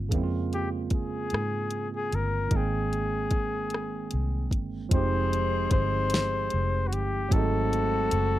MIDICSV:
0, 0, Header, 1, 6, 480
1, 0, Start_track
1, 0, Tempo, 800000
1, 70, Time_signature, 6, 3, 24, 8
1, 5035, End_track
2, 0, Start_track
2, 0, Title_t, "Flugelhorn"
2, 0, Program_c, 0, 56
2, 322, Note_on_c, 0, 67, 78
2, 418, Note_off_c, 0, 67, 0
2, 567, Note_on_c, 0, 68, 84
2, 1134, Note_off_c, 0, 68, 0
2, 1173, Note_on_c, 0, 68, 87
2, 1289, Note_on_c, 0, 70, 85
2, 1298, Note_off_c, 0, 68, 0
2, 1535, Note_on_c, 0, 68, 85
2, 1544, Note_off_c, 0, 70, 0
2, 2723, Note_off_c, 0, 68, 0
2, 2966, Note_on_c, 0, 72, 99
2, 3414, Note_off_c, 0, 72, 0
2, 3434, Note_on_c, 0, 72, 107
2, 4124, Note_on_c, 0, 66, 66
2, 4133, Note_off_c, 0, 72, 0
2, 4161, Note_on_c, 0, 67, 88
2, 4170, Note_off_c, 0, 66, 0
2, 4396, Note_on_c, 0, 69, 104
2, 4405, Note_off_c, 0, 67, 0
2, 5035, Note_off_c, 0, 69, 0
2, 5035, End_track
3, 0, Start_track
3, 0, Title_t, "Horn section"
3, 0, Program_c, 1, 61
3, 2950, Note_on_c, 1, 63, 74
3, 2952, Note_on_c, 1, 60, 71
3, 2952, Note_on_c, 1, 68, 71
3, 4126, Note_off_c, 1, 63, 0
3, 4127, Note_off_c, 1, 60, 0
3, 4127, Note_off_c, 1, 68, 0
3, 4390, Note_on_c, 1, 60, 68
3, 4390, Note_on_c, 1, 63, 65
3, 4392, Note_on_c, 1, 66, 77
3, 5035, Note_off_c, 1, 60, 0
3, 5035, Note_off_c, 1, 63, 0
3, 5035, Note_off_c, 1, 66, 0
3, 5035, End_track
4, 0, Start_track
4, 0, Title_t, "Tine electric piano"
4, 0, Program_c, 2, 4
4, 0, Control_c, 2, 64, 127
4, 0, Note_on_c, 2, 65, 58
4, 53, Note_on_c, 2, 49, 66
4, 62, Note_off_c, 2, 65, 0
4, 64, Note_on_c, 2, 56, 59
4, 78, Control_c, 2, 64, 0
4, 78, Note_on_c, 2, 58, 62
4, 89, Note_on_c, 2, 60, 56
4, 101, Note_on_c, 2, 64, 58
4, 125, Note_off_c, 2, 64, 0
4, 141, Note_on_c, 2, 65, 71
4, 171, Control_c, 2, 64, 127
4, 1478, Note_off_c, 2, 49, 0
4, 1483, Note_off_c, 2, 56, 0
4, 1490, Note_off_c, 2, 58, 0
4, 1492, Note_on_c, 2, 51, 59
4, 1496, Note_off_c, 2, 60, 0
4, 1505, Note_on_c, 2, 56, 55
4, 1518, Note_on_c, 2, 58, 55
4, 1519, Control_c, 2, 64, 0
4, 1522, Note_off_c, 2, 65, 0
4, 1527, Note_on_c, 2, 60, 51
4, 1541, Note_on_c, 2, 79, 62
4, 1614, Control_c, 2, 64, 127
4, 2917, Note_off_c, 2, 51, 0
4, 2924, Note_off_c, 2, 56, 0
4, 2930, Note_off_c, 2, 58, 0
4, 2935, Note_off_c, 2, 60, 0
4, 2935, Note_on_c, 2, 53, 67
4, 2942, Note_off_c, 2, 79, 0
4, 2945, Note_on_c, 2, 56, 57
4, 2958, Note_on_c, 2, 60, 55
4, 2959, Control_c, 2, 64, 0
4, 2969, Note_on_c, 2, 63, 59
4, 2980, Note_on_c, 2, 67, 64
4, 3048, Control_c, 2, 64, 127
4, 4358, Note_off_c, 2, 53, 0
4, 4364, Note_off_c, 2, 56, 0
4, 4370, Note_off_c, 2, 60, 0
4, 4371, Note_on_c, 2, 54, 66
4, 4376, Note_off_c, 2, 63, 0
4, 4381, Note_off_c, 2, 67, 0
4, 4383, Note_on_c, 2, 57, 55
4, 4395, Note_on_c, 2, 60, 59
4, 4397, Control_c, 2, 64, 0
4, 4406, Note_on_c, 2, 63, 62
4, 4419, Note_on_c, 2, 56, 70
4, 4517, Control_c, 2, 64, 127
4, 5035, Note_off_c, 2, 54, 0
4, 5035, Note_off_c, 2, 56, 0
4, 5035, Note_off_c, 2, 57, 0
4, 5035, Note_off_c, 2, 60, 0
4, 5035, Note_off_c, 2, 63, 0
4, 5035, End_track
5, 0, Start_track
5, 0, Title_t, "Fingered electric bass"
5, 0, Program_c, 3, 33
5, 0, Note_on_c, 3, 31, 77
5, 73, Note_on_c, 3, 41, 100
5, 82, Note_off_c, 3, 31, 0
5, 768, Note_off_c, 3, 41, 0
5, 798, Note_on_c, 3, 44, 80
5, 1250, Note_off_c, 3, 44, 0
5, 1278, Note_on_c, 3, 31, 78
5, 1491, Note_off_c, 3, 31, 0
5, 1511, Note_on_c, 3, 32, 88
5, 2447, Note_off_c, 3, 32, 0
5, 2481, Note_on_c, 3, 36, 73
5, 2712, Note_off_c, 3, 36, 0
5, 2712, Note_on_c, 3, 31, 70
5, 2927, Note_off_c, 3, 31, 0
5, 2952, Note_on_c, 3, 29, 100
5, 3407, Note_off_c, 3, 29, 0
5, 3434, Note_on_c, 3, 31, 91
5, 3888, Note_off_c, 3, 31, 0
5, 3923, Note_on_c, 3, 29, 97
5, 4157, Note_off_c, 3, 29, 0
5, 4157, Note_on_c, 3, 31, 90
5, 4370, Note_off_c, 3, 31, 0
5, 4394, Note_on_c, 3, 32, 99
5, 4848, Note_off_c, 3, 32, 0
5, 4876, Note_on_c, 3, 30, 104
5, 5035, Note_off_c, 3, 30, 0
5, 5035, End_track
6, 0, Start_track
6, 0, Title_t, "Drums"
6, 68, Note_on_c, 9, 36, 86
6, 71, Note_on_c, 9, 42, 66
6, 128, Note_off_c, 9, 36, 0
6, 131, Note_off_c, 9, 42, 0
6, 316, Note_on_c, 9, 42, 44
6, 376, Note_off_c, 9, 42, 0
6, 542, Note_on_c, 9, 42, 43
6, 546, Note_on_c, 9, 36, 82
6, 602, Note_off_c, 9, 42, 0
6, 606, Note_off_c, 9, 36, 0
6, 780, Note_on_c, 9, 42, 48
6, 806, Note_on_c, 9, 37, 91
6, 840, Note_off_c, 9, 42, 0
6, 866, Note_off_c, 9, 37, 0
6, 1023, Note_on_c, 9, 42, 54
6, 1083, Note_off_c, 9, 42, 0
6, 1275, Note_on_c, 9, 42, 43
6, 1335, Note_off_c, 9, 42, 0
6, 1505, Note_on_c, 9, 42, 57
6, 1507, Note_on_c, 9, 36, 89
6, 1565, Note_off_c, 9, 42, 0
6, 1567, Note_off_c, 9, 36, 0
6, 1757, Note_on_c, 9, 42, 46
6, 1817, Note_off_c, 9, 42, 0
6, 1983, Note_on_c, 9, 42, 46
6, 1987, Note_on_c, 9, 36, 88
6, 2043, Note_off_c, 9, 42, 0
6, 2047, Note_off_c, 9, 36, 0
6, 2221, Note_on_c, 9, 42, 50
6, 2246, Note_on_c, 9, 37, 81
6, 2281, Note_off_c, 9, 42, 0
6, 2306, Note_off_c, 9, 37, 0
6, 2464, Note_on_c, 9, 42, 55
6, 2524, Note_off_c, 9, 42, 0
6, 2707, Note_on_c, 9, 36, 70
6, 2715, Note_on_c, 9, 42, 46
6, 2767, Note_off_c, 9, 36, 0
6, 2775, Note_off_c, 9, 42, 0
6, 2947, Note_on_c, 9, 36, 98
6, 2948, Note_on_c, 9, 42, 74
6, 3007, Note_off_c, 9, 36, 0
6, 3008, Note_off_c, 9, 42, 0
6, 3198, Note_on_c, 9, 42, 55
6, 3258, Note_off_c, 9, 42, 0
6, 3424, Note_on_c, 9, 42, 58
6, 3427, Note_on_c, 9, 36, 98
6, 3484, Note_off_c, 9, 42, 0
6, 3487, Note_off_c, 9, 36, 0
6, 3659, Note_on_c, 9, 42, 65
6, 3684, Note_on_c, 9, 38, 103
6, 3719, Note_off_c, 9, 42, 0
6, 3744, Note_off_c, 9, 38, 0
6, 3902, Note_on_c, 9, 42, 61
6, 3962, Note_off_c, 9, 42, 0
6, 4155, Note_on_c, 9, 42, 54
6, 4215, Note_off_c, 9, 42, 0
6, 4388, Note_on_c, 9, 36, 103
6, 4392, Note_on_c, 9, 42, 68
6, 4448, Note_off_c, 9, 36, 0
6, 4452, Note_off_c, 9, 42, 0
6, 4638, Note_on_c, 9, 42, 50
6, 4698, Note_off_c, 9, 42, 0
6, 4868, Note_on_c, 9, 42, 59
6, 4928, Note_off_c, 9, 42, 0
6, 5035, End_track
0, 0, End_of_file